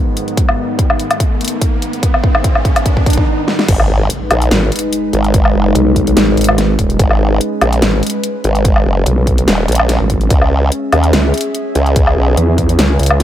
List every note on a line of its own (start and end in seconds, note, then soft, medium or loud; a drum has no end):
0.00 3.23 G#2 medium
0.00 3.23 D#3 medium
0.00 3.23 B3 medium
0.00 riser medium
0.17 closed hi-hat medium
0.28 closed hi-hat soft
0.37 kick loud
0.37 closed hi-hat medium
0.49 low woodblock soft
0.79 kick loud
0.79 closed hi-hat medium
0.90 low woodblock medium
1.00 closed hi-hat soft
1.11 closed hi-hat medium
1.11 low woodblock medium
1.20 kick loud
1.20 closed hi-hat medium
1.41 closed hi-hat soft
1.45 closed hi-hat medium
1.48 closed hi-hat medium
1.62 kick loud
1.62 closed hi-hat medium
1.82 closed hi-hat medium
1.93 closed hi-hat soft
2.03 kick loud
2.03 closed hi-hat medium
2.14 low woodblock soft
2.24 kick loud
2.35 low woodblock medium
2.44 kick loud
2.44 closed hi-hat medium
2.55 low woodblock soft
2.65 kick loud
2.65 closed hi-hat soft
2.76 closed hi-hat medium
2.76 low woodblock medium
2.86 kick loud
2.86 closed hi-hat medium
2.97 kick medium
3.06 kick loud
3.06 closed hi-hat soft
3.10 closed hi-hat medium
3.13 closed hi-hat medium
3.17 kick medium
3.48 snare medium
3.59 snare medium
3.68 4.08 G#1 medium
3.68 10.26 G#3 medium
3.68 6.96 D#4 medium
3.68 10.26 B4 medium
3.68 kick loud
3.68 closed hi-hat medium
3.68 crash loud
3.68 impact medium
3.80 low woodblock medium
4.10 closed hi-hat medium
4.31 4.50 A#1 loud
4.31 closed hi-hat medium
4.31 low woodblock medium
4.42 closed hi-hat medium
4.51 4.70 G#1 loud
4.51 snare loud
4.51 closed hi-hat medium
4.72 closed hi-hat medium
4.76 closed hi-hat medium
4.79 closed hi-hat medium
4.93 closed hi-hat medium
5.13 5.53 G#1 medium
5.13 closed hi-hat medium
5.24 closed hi-hat soft
5.34 kick loud
5.34 closed hi-hat medium
5.45 low woodblock medium
5.55 5.74 F#1 loud
5.75 6.15 B1 loud
5.75 closed hi-hat medium
5.96 kick medium
5.96 closed hi-hat medium
6.07 closed hi-hat medium
6.17 6.36 G#1 loud
6.17 snare loud
6.17 closed hi-hat medium
6.37 6.77 G#1 loud
6.37 closed hi-hat medium
6.41 closed hi-hat medium
6.44 closed hi-hat medium
6.49 low woodblock medium
6.58 snare medium
6.58 closed hi-hat medium
6.79 6.98 D#1 loud
6.79 kick medium
6.79 closed hi-hat medium
6.90 closed hi-hat soft
6.99 7.39 G#1 medium
6.99 13.23 C#4 medium
6.99 kick loud
6.99 closed hi-hat medium
7.11 low woodblock soft
7.41 closed hi-hat medium
7.61 7.81 A#1 loud
7.61 closed hi-hat medium
7.61 low woodblock medium
7.73 closed hi-hat medium
7.82 8.01 G#1 loud
7.82 snare loud
7.82 closed hi-hat medium
8.03 closed hi-hat medium
8.07 closed hi-hat medium
8.10 closed hi-hat medium
8.24 closed hi-hat medium
8.44 8.84 G#1 medium
8.44 closed hi-hat medium
8.55 closed hi-hat soft
8.65 kick loud
8.65 closed hi-hat medium
8.76 low woodblock soft
8.86 9.05 F#1 loud
9.06 9.46 B1 loud
9.06 closed hi-hat medium
9.27 kick medium
9.27 closed hi-hat medium
9.38 closed hi-hat medium
9.48 9.67 D#1 loud
9.48 snare loud
9.48 closed hi-hat medium
9.68 9.98 A#1 loud
9.68 closed hi-hat soft
9.72 closed hi-hat medium
9.75 closed hi-hat medium
9.79 low woodblock medium
9.89 snare medium
9.89 closed hi-hat medium
10.00 10.29 G#1 medium
10.10 kick medium
10.10 closed hi-hat medium
10.21 closed hi-hat soft
10.30 10.70 C#2 medium
10.30 13.23 G#4 medium
10.30 13.23 E5 medium
10.30 kick loud
10.30 closed hi-hat medium
10.42 low woodblock soft
10.72 closed hi-hat medium
10.93 11.12 D#2 loud
10.93 closed hi-hat soft
10.93 low woodblock medium
11.04 closed hi-hat medium
11.13 11.32 C#2 loud
11.13 snare loud
11.13 closed hi-hat medium
11.34 closed hi-hat soft
11.38 closed hi-hat medium
11.41 closed hi-hat medium
11.55 closed hi-hat medium
11.75 12.15 C#2 medium
11.75 closed hi-hat medium
11.86 closed hi-hat soft
11.96 kick loud
11.96 closed hi-hat medium
12.07 low woodblock medium
12.17 12.36 B1 loud
12.37 12.77 E2 loud
12.37 closed hi-hat medium
12.58 kick medium
12.58 closed hi-hat medium
12.69 closed hi-hat medium
12.79 12.98 C#2 loud
12.79 snare loud
12.79 closed hi-hat medium
12.99 13.23 C#2 loud
12.99 closed hi-hat soft
13.03 closed hi-hat medium
13.06 closed hi-hat medium
13.11 low woodblock medium